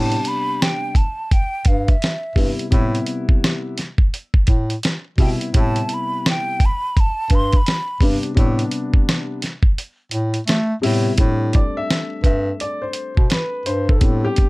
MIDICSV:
0, 0, Header, 1, 5, 480
1, 0, Start_track
1, 0, Key_signature, 0, "minor"
1, 0, Tempo, 705882
1, 1850, Time_signature, 4, 2, 24, 8
1, 9855, End_track
2, 0, Start_track
2, 0, Title_t, "Flute"
2, 0, Program_c, 0, 73
2, 0, Note_on_c, 0, 81, 93
2, 189, Note_on_c, 0, 83, 99
2, 199, Note_off_c, 0, 81, 0
2, 423, Note_on_c, 0, 79, 96
2, 434, Note_off_c, 0, 83, 0
2, 659, Note_on_c, 0, 81, 85
2, 669, Note_off_c, 0, 79, 0
2, 902, Note_on_c, 0, 79, 93
2, 912, Note_off_c, 0, 81, 0
2, 1141, Note_on_c, 0, 77, 79
2, 1151, Note_off_c, 0, 79, 0
2, 1285, Note_on_c, 0, 76, 72
2, 1295, Note_off_c, 0, 77, 0
2, 1615, Note_off_c, 0, 76, 0
2, 3550, Note_on_c, 0, 79, 66
2, 3601, Note_off_c, 0, 79, 0
2, 3801, Note_on_c, 0, 81, 94
2, 4039, Note_on_c, 0, 83, 95
2, 4049, Note_off_c, 0, 81, 0
2, 4264, Note_off_c, 0, 83, 0
2, 4280, Note_on_c, 0, 79, 87
2, 4525, Note_on_c, 0, 83, 96
2, 4535, Note_off_c, 0, 79, 0
2, 4761, Note_on_c, 0, 81, 101
2, 4771, Note_off_c, 0, 83, 0
2, 4999, Note_on_c, 0, 84, 105
2, 5009, Note_off_c, 0, 81, 0
2, 5145, Note_on_c, 0, 83, 96
2, 5155, Note_off_c, 0, 84, 0
2, 5465, Note_off_c, 0, 83, 0
2, 9855, End_track
3, 0, Start_track
3, 0, Title_t, "Grand piano"
3, 0, Program_c, 1, 0
3, 0, Note_on_c, 1, 48, 66
3, 0, Note_on_c, 1, 55, 68
3, 0, Note_on_c, 1, 59, 68
3, 0, Note_on_c, 1, 62, 79
3, 627, Note_off_c, 1, 48, 0
3, 630, Note_off_c, 1, 55, 0
3, 631, Note_off_c, 1, 59, 0
3, 633, Note_off_c, 1, 62, 0
3, 1602, Note_on_c, 1, 48, 68
3, 1603, Note_on_c, 1, 55, 67
3, 1611, Note_on_c, 1, 59, 60
3, 1615, Note_on_c, 1, 64, 74
3, 1794, Note_off_c, 1, 48, 0
3, 1795, Note_off_c, 1, 55, 0
3, 1799, Note_off_c, 1, 59, 0
3, 1801, Note_off_c, 1, 64, 0
3, 1841, Note_on_c, 1, 48, 90
3, 1848, Note_on_c, 1, 55, 78
3, 1852, Note_on_c, 1, 59, 80
3, 1859, Note_on_c, 1, 64, 88
3, 2549, Note_off_c, 1, 48, 0
3, 2552, Note_off_c, 1, 55, 0
3, 2554, Note_off_c, 1, 59, 0
3, 2558, Note_off_c, 1, 64, 0
3, 3524, Note_on_c, 1, 48, 67
3, 3526, Note_on_c, 1, 55, 57
3, 3532, Note_on_c, 1, 59, 60
3, 3537, Note_on_c, 1, 64, 82
3, 3716, Note_off_c, 1, 48, 0
3, 3716, Note_off_c, 1, 55, 0
3, 3719, Note_off_c, 1, 59, 0
3, 3722, Note_off_c, 1, 64, 0
3, 3772, Note_on_c, 1, 48, 68
3, 3777, Note_on_c, 1, 55, 65
3, 3782, Note_on_c, 1, 59, 62
3, 3784, Note_on_c, 1, 64, 82
3, 4474, Note_off_c, 1, 48, 0
3, 4476, Note_off_c, 1, 55, 0
3, 4479, Note_off_c, 1, 59, 0
3, 4480, Note_off_c, 1, 64, 0
3, 5443, Note_on_c, 1, 48, 67
3, 5447, Note_on_c, 1, 55, 63
3, 5449, Note_on_c, 1, 59, 67
3, 5456, Note_on_c, 1, 62, 77
3, 5635, Note_off_c, 1, 48, 0
3, 5637, Note_off_c, 1, 55, 0
3, 5638, Note_off_c, 1, 59, 0
3, 5641, Note_off_c, 1, 62, 0
3, 5677, Note_on_c, 1, 48, 84
3, 5681, Note_on_c, 1, 55, 74
3, 5686, Note_on_c, 1, 59, 77
3, 5691, Note_on_c, 1, 62, 85
3, 6386, Note_off_c, 1, 48, 0
3, 6389, Note_off_c, 1, 55, 0
3, 6391, Note_off_c, 1, 59, 0
3, 6394, Note_off_c, 1, 62, 0
3, 7356, Note_on_c, 1, 48, 84
3, 7358, Note_on_c, 1, 55, 74
3, 7365, Note_on_c, 1, 59, 72
3, 7369, Note_on_c, 1, 64, 93
3, 7551, Note_off_c, 1, 48, 0
3, 7552, Note_off_c, 1, 55, 0
3, 7556, Note_off_c, 1, 59, 0
3, 7558, Note_off_c, 1, 64, 0
3, 7604, Note_on_c, 1, 57, 46
3, 7607, Note_on_c, 1, 55, 48
3, 7610, Note_on_c, 1, 60, 45
3, 7612, Note_on_c, 1, 62, 63
3, 7855, Note_on_c, 1, 74, 87
3, 8002, Note_off_c, 1, 74, 0
3, 8004, Note_on_c, 1, 76, 101
3, 8311, Note_off_c, 1, 76, 0
3, 8335, Note_on_c, 1, 76, 83
3, 8556, Note_off_c, 1, 76, 0
3, 8575, Note_on_c, 1, 74, 91
3, 8716, Note_on_c, 1, 72, 84
3, 8722, Note_off_c, 1, 74, 0
3, 9027, Note_off_c, 1, 72, 0
3, 9050, Note_on_c, 1, 71, 95
3, 9291, Note_on_c, 1, 72, 87
3, 9297, Note_off_c, 1, 71, 0
3, 9440, Note_off_c, 1, 72, 0
3, 9445, Note_on_c, 1, 69, 80
3, 9500, Note_off_c, 1, 57, 0
3, 9501, Note_off_c, 1, 55, 0
3, 9503, Note_off_c, 1, 60, 0
3, 9504, Note_off_c, 1, 62, 0
3, 9525, Note_on_c, 1, 55, 52
3, 9529, Note_on_c, 1, 59, 52
3, 9533, Note_on_c, 1, 60, 50
3, 9536, Note_on_c, 1, 62, 57
3, 9687, Note_off_c, 1, 69, 0
3, 9687, Note_on_c, 1, 67, 105
3, 9855, Note_off_c, 1, 55, 0
3, 9855, Note_off_c, 1, 59, 0
3, 9855, Note_off_c, 1, 60, 0
3, 9855, Note_off_c, 1, 62, 0
3, 9855, Note_off_c, 1, 67, 0
3, 9855, End_track
4, 0, Start_track
4, 0, Title_t, "Bass clarinet"
4, 0, Program_c, 2, 71
4, 0, Note_on_c, 2, 45, 96
4, 113, Note_off_c, 2, 45, 0
4, 1128, Note_on_c, 2, 43, 93
4, 1311, Note_off_c, 2, 43, 0
4, 1601, Note_on_c, 2, 43, 85
4, 1715, Note_off_c, 2, 43, 0
4, 1851, Note_on_c, 2, 45, 115
4, 2033, Note_off_c, 2, 45, 0
4, 3046, Note_on_c, 2, 45, 85
4, 3230, Note_off_c, 2, 45, 0
4, 3525, Note_on_c, 2, 47, 86
4, 3638, Note_off_c, 2, 47, 0
4, 3771, Note_on_c, 2, 45, 112
4, 3953, Note_off_c, 2, 45, 0
4, 4969, Note_on_c, 2, 43, 98
4, 5152, Note_off_c, 2, 43, 0
4, 5444, Note_on_c, 2, 43, 96
4, 5557, Note_off_c, 2, 43, 0
4, 5692, Note_on_c, 2, 45, 106
4, 5874, Note_off_c, 2, 45, 0
4, 6883, Note_on_c, 2, 45, 82
4, 7068, Note_off_c, 2, 45, 0
4, 7118, Note_on_c, 2, 57, 94
4, 7305, Note_off_c, 2, 57, 0
4, 7359, Note_on_c, 2, 45, 92
4, 7546, Note_off_c, 2, 45, 0
4, 7605, Note_on_c, 2, 45, 106
4, 7900, Note_off_c, 2, 45, 0
4, 8321, Note_on_c, 2, 43, 104
4, 8507, Note_off_c, 2, 43, 0
4, 8957, Note_on_c, 2, 47, 84
4, 9028, Note_off_c, 2, 47, 0
4, 9287, Note_on_c, 2, 43, 90
4, 9530, Note_on_c, 2, 45, 107
4, 9540, Note_off_c, 2, 43, 0
4, 9713, Note_off_c, 2, 45, 0
4, 9855, End_track
5, 0, Start_track
5, 0, Title_t, "Drums"
5, 79, Note_on_c, 9, 42, 56
5, 147, Note_off_c, 9, 42, 0
5, 169, Note_on_c, 9, 42, 71
5, 237, Note_off_c, 9, 42, 0
5, 423, Note_on_c, 9, 38, 106
5, 424, Note_on_c, 9, 42, 81
5, 491, Note_off_c, 9, 38, 0
5, 492, Note_off_c, 9, 42, 0
5, 646, Note_on_c, 9, 36, 84
5, 651, Note_on_c, 9, 42, 70
5, 714, Note_off_c, 9, 36, 0
5, 719, Note_off_c, 9, 42, 0
5, 894, Note_on_c, 9, 36, 98
5, 894, Note_on_c, 9, 42, 79
5, 962, Note_off_c, 9, 36, 0
5, 962, Note_off_c, 9, 42, 0
5, 1120, Note_on_c, 9, 42, 83
5, 1126, Note_on_c, 9, 36, 94
5, 1188, Note_off_c, 9, 42, 0
5, 1194, Note_off_c, 9, 36, 0
5, 1280, Note_on_c, 9, 42, 45
5, 1282, Note_on_c, 9, 36, 84
5, 1348, Note_off_c, 9, 42, 0
5, 1350, Note_off_c, 9, 36, 0
5, 1374, Note_on_c, 9, 42, 78
5, 1386, Note_on_c, 9, 38, 96
5, 1442, Note_off_c, 9, 42, 0
5, 1454, Note_off_c, 9, 38, 0
5, 1604, Note_on_c, 9, 36, 87
5, 1615, Note_on_c, 9, 46, 46
5, 1672, Note_off_c, 9, 36, 0
5, 1683, Note_off_c, 9, 46, 0
5, 1764, Note_on_c, 9, 42, 50
5, 1832, Note_off_c, 9, 42, 0
5, 1849, Note_on_c, 9, 42, 83
5, 1851, Note_on_c, 9, 36, 107
5, 1917, Note_off_c, 9, 42, 0
5, 1919, Note_off_c, 9, 36, 0
5, 2004, Note_on_c, 9, 42, 57
5, 2072, Note_off_c, 9, 42, 0
5, 2084, Note_on_c, 9, 42, 69
5, 2152, Note_off_c, 9, 42, 0
5, 2236, Note_on_c, 9, 36, 89
5, 2304, Note_off_c, 9, 36, 0
5, 2340, Note_on_c, 9, 38, 108
5, 2341, Note_on_c, 9, 42, 77
5, 2408, Note_off_c, 9, 38, 0
5, 2409, Note_off_c, 9, 42, 0
5, 2567, Note_on_c, 9, 42, 71
5, 2577, Note_on_c, 9, 38, 32
5, 2635, Note_off_c, 9, 42, 0
5, 2645, Note_off_c, 9, 38, 0
5, 2708, Note_on_c, 9, 36, 85
5, 2776, Note_off_c, 9, 36, 0
5, 2814, Note_on_c, 9, 42, 73
5, 2882, Note_off_c, 9, 42, 0
5, 2950, Note_on_c, 9, 36, 85
5, 3018, Note_off_c, 9, 36, 0
5, 3038, Note_on_c, 9, 42, 79
5, 3046, Note_on_c, 9, 36, 92
5, 3106, Note_off_c, 9, 42, 0
5, 3114, Note_off_c, 9, 36, 0
5, 3196, Note_on_c, 9, 42, 50
5, 3264, Note_off_c, 9, 42, 0
5, 3286, Note_on_c, 9, 42, 85
5, 3298, Note_on_c, 9, 38, 100
5, 3354, Note_off_c, 9, 42, 0
5, 3366, Note_off_c, 9, 38, 0
5, 3523, Note_on_c, 9, 36, 88
5, 3526, Note_on_c, 9, 46, 54
5, 3591, Note_off_c, 9, 36, 0
5, 3594, Note_off_c, 9, 46, 0
5, 3680, Note_on_c, 9, 42, 55
5, 3748, Note_off_c, 9, 42, 0
5, 3768, Note_on_c, 9, 42, 91
5, 3771, Note_on_c, 9, 36, 109
5, 3836, Note_off_c, 9, 42, 0
5, 3839, Note_off_c, 9, 36, 0
5, 3916, Note_on_c, 9, 42, 57
5, 3984, Note_off_c, 9, 42, 0
5, 4005, Note_on_c, 9, 42, 70
5, 4073, Note_off_c, 9, 42, 0
5, 4258, Note_on_c, 9, 38, 116
5, 4259, Note_on_c, 9, 42, 72
5, 4326, Note_off_c, 9, 38, 0
5, 4327, Note_off_c, 9, 42, 0
5, 4488, Note_on_c, 9, 36, 85
5, 4492, Note_on_c, 9, 42, 67
5, 4556, Note_off_c, 9, 36, 0
5, 4560, Note_off_c, 9, 42, 0
5, 4737, Note_on_c, 9, 36, 98
5, 4739, Note_on_c, 9, 42, 69
5, 4805, Note_off_c, 9, 36, 0
5, 4807, Note_off_c, 9, 42, 0
5, 4962, Note_on_c, 9, 42, 76
5, 4968, Note_on_c, 9, 36, 93
5, 5030, Note_off_c, 9, 42, 0
5, 5036, Note_off_c, 9, 36, 0
5, 5117, Note_on_c, 9, 42, 49
5, 5123, Note_on_c, 9, 36, 87
5, 5185, Note_off_c, 9, 42, 0
5, 5191, Note_off_c, 9, 36, 0
5, 5212, Note_on_c, 9, 42, 90
5, 5223, Note_on_c, 9, 38, 101
5, 5280, Note_off_c, 9, 42, 0
5, 5291, Note_off_c, 9, 38, 0
5, 5444, Note_on_c, 9, 36, 88
5, 5451, Note_on_c, 9, 46, 49
5, 5512, Note_off_c, 9, 36, 0
5, 5519, Note_off_c, 9, 46, 0
5, 5598, Note_on_c, 9, 42, 48
5, 5666, Note_off_c, 9, 42, 0
5, 5692, Note_on_c, 9, 36, 101
5, 5692, Note_on_c, 9, 42, 83
5, 5760, Note_off_c, 9, 36, 0
5, 5760, Note_off_c, 9, 42, 0
5, 5840, Note_on_c, 9, 42, 59
5, 5908, Note_off_c, 9, 42, 0
5, 5926, Note_on_c, 9, 42, 75
5, 5994, Note_off_c, 9, 42, 0
5, 6076, Note_on_c, 9, 36, 95
5, 6144, Note_off_c, 9, 36, 0
5, 6180, Note_on_c, 9, 38, 115
5, 6181, Note_on_c, 9, 42, 82
5, 6248, Note_off_c, 9, 38, 0
5, 6249, Note_off_c, 9, 42, 0
5, 6407, Note_on_c, 9, 42, 78
5, 6417, Note_on_c, 9, 38, 37
5, 6475, Note_off_c, 9, 42, 0
5, 6485, Note_off_c, 9, 38, 0
5, 6546, Note_on_c, 9, 36, 95
5, 6614, Note_off_c, 9, 36, 0
5, 6653, Note_on_c, 9, 42, 80
5, 6721, Note_off_c, 9, 42, 0
5, 6877, Note_on_c, 9, 42, 84
5, 6945, Note_off_c, 9, 42, 0
5, 7030, Note_on_c, 9, 42, 51
5, 7098, Note_off_c, 9, 42, 0
5, 7123, Note_on_c, 9, 42, 76
5, 7135, Note_on_c, 9, 38, 92
5, 7191, Note_off_c, 9, 42, 0
5, 7203, Note_off_c, 9, 38, 0
5, 7367, Note_on_c, 9, 46, 51
5, 7435, Note_off_c, 9, 46, 0
5, 7600, Note_on_c, 9, 42, 85
5, 7604, Note_on_c, 9, 36, 92
5, 7668, Note_off_c, 9, 42, 0
5, 7672, Note_off_c, 9, 36, 0
5, 7842, Note_on_c, 9, 42, 69
5, 7853, Note_on_c, 9, 36, 91
5, 7910, Note_off_c, 9, 42, 0
5, 7921, Note_off_c, 9, 36, 0
5, 8096, Note_on_c, 9, 38, 116
5, 8096, Note_on_c, 9, 42, 72
5, 8164, Note_off_c, 9, 38, 0
5, 8164, Note_off_c, 9, 42, 0
5, 8322, Note_on_c, 9, 36, 80
5, 8326, Note_on_c, 9, 42, 71
5, 8390, Note_off_c, 9, 36, 0
5, 8394, Note_off_c, 9, 42, 0
5, 8569, Note_on_c, 9, 42, 69
5, 8637, Note_off_c, 9, 42, 0
5, 8795, Note_on_c, 9, 42, 77
5, 8863, Note_off_c, 9, 42, 0
5, 8958, Note_on_c, 9, 36, 89
5, 9026, Note_off_c, 9, 36, 0
5, 9044, Note_on_c, 9, 42, 89
5, 9055, Note_on_c, 9, 38, 92
5, 9112, Note_off_c, 9, 42, 0
5, 9123, Note_off_c, 9, 38, 0
5, 9289, Note_on_c, 9, 42, 70
5, 9357, Note_off_c, 9, 42, 0
5, 9446, Note_on_c, 9, 36, 94
5, 9514, Note_off_c, 9, 36, 0
5, 9526, Note_on_c, 9, 42, 91
5, 9529, Note_on_c, 9, 36, 109
5, 9594, Note_off_c, 9, 42, 0
5, 9597, Note_off_c, 9, 36, 0
5, 9767, Note_on_c, 9, 42, 75
5, 9779, Note_on_c, 9, 36, 87
5, 9835, Note_off_c, 9, 42, 0
5, 9847, Note_off_c, 9, 36, 0
5, 9855, End_track
0, 0, End_of_file